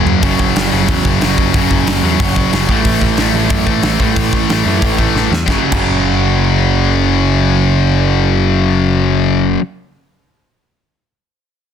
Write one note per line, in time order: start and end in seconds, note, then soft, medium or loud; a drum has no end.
0.00 0.21 F#2 medium
0.00 0.22 F#2 loud
0.00 0.22 C#3 medium
0.00 0.23 C#3 loud
0.00 0.23 F#3 medium
0.00 0.23 F#3 loud
0.06 0.19 F#2 loud
0.06 floor tom loud
0.22 0.35 F#1 medium
0.22 0.71 F#2 medium
0.22 0.72 C#3 medium
0.22 0.70 F#3 loud
0.22 kick loud
0.22 open hi-hat medium
0.39 0.52 F#1 medium
0.39 kick medium
0.55 0.68 F#1 medium
0.55 snare loud
0.55 open hi-hat medium
0.71 0.85 F#1 medium
0.71 1.19 F#2 medium
0.71 1.21 C#3 medium
0.71 1.20 F#3 medium
0.88 1.01 E2 medium
0.88 1.53 F#2 medium
0.88 1.54 C#3 medium
0.88 1.55 F#3 medium
0.88 kick loud
0.88 open hi-hat medium
1.05 1.18 F#1 medium
1.05 kick medium
1.20 1.34 F#1 medium
1.20 1.53 F#2 medium
1.20 1.54 C#3 medium
1.20 1.54 F#3 medium
1.20 snare loud
1.20 open hi-hat medium
1.38 1.50 F#1 medium
1.38 kick medium
1.54 1.66 F#1 medium
1.54 2.02 F#2 loud
1.54 2.03 C#3 medium
1.54 2.02 F#3 loud
1.54 kick loud
1.54 open hi-hat medium
1.70 1.83 F#1 medium
1.70 kick medium
1.86 1.99 F#1 medium
1.86 snare loud
1.86 open hi-hat medium
2.03 2.15 E2 medium
2.03 2.52 C#3 medium
2.03 2.52 F#3 medium
2.07 2.50 F#2 medium
2.20 2.44 F#1 medium
2.20 2.68 F#2 medium
2.20 2.69 C#3 medium
2.20 2.70 F#3 medium
2.20 kick loud
2.20 open hi-hat medium
2.36 kick medium
2.51 2.65 F#1 medium
2.51 2.67 F#2 medium
2.51 2.68 C#3 medium
2.51 2.69 F#3 medium
2.51 snare loud
2.51 open hi-hat medium
2.69 2.81 A1 medium
2.69 3.19 A2 medium
2.69 3.20 E3 loud
2.69 3.21 A3 loud
2.69 kick medium
2.85 2.97 A1 medium
2.85 kick loud
2.85 open hi-hat medium
3.01 3.14 A1 medium
3.01 kick medium
3.17 3.30 A1 medium
3.17 3.67 A2 medium
3.17 3.66 E3 medium
3.17 snare loud
3.17 open hi-hat medium
3.22 3.66 A3 medium
3.34 3.46 A1 medium
3.34 4.00 E3 medium
3.34 4.02 A3 medium
3.38 3.98 A2 medium
3.50 3.63 F#2 medium
3.50 kick loud
3.50 open hi-hat medium
3.66 3.79 A1 medium
3.66 3.97 A2 medium
3.66 3.99 E3 medium
3.66 4.01 A3 medium
3.66 kick medium
3.83 3.95 A1 medium
3.83 snare loud
3.83 open hi-hat medium
3.98 4.12 A1 medium
3.98 4.47 A2 medium
3.98 4.48 E3 loud
3.98 4.49 A3 loud
3.98 kick medium
4.16 4.29 A1 medium
4.16 kick loud
4.16 open hi-hat medium
4.33 4.45 A1 medium
4.33 kick medium
4.49 4.62 A1 medium
4.49 4.98 A2 medium
4.49 4.98 E3 medium
4.49 4.97 A3 medium
4.49 snare loud
4.49 open hi-hat medium
4.66 4.78 F#2 medium
4.66 5.32 A2 medium
4.66 5.31 E3 medium
4.66 5.30 A3 medium
4.82 5.07 A1 medium
4.82 kick loud
4.82 open hi-hat medium
4.98 5.32 A2 medium
4.98 5.31 E3 medium
4.98 5.30 A3 medium
4.98 kick medium
5.15 5.27 A1 medium
5.15 snare medium
5.31 5.44 E2 medium
5.31 snare medium
5.46 5.56 F#1 medium
5.46 5.71 F#2 medium
5.46 5.72 C#3 medium
5.46 kick loud
5.46 snare medium
5.50 5.75 F#3 medium
5.71 9.55 F#1 medium
5.71 9.59 F#2 medium
5.71 9.60 C#3 medium
5.71 kick loud
5.71 crash medium
5.75 9.61 F#3 medium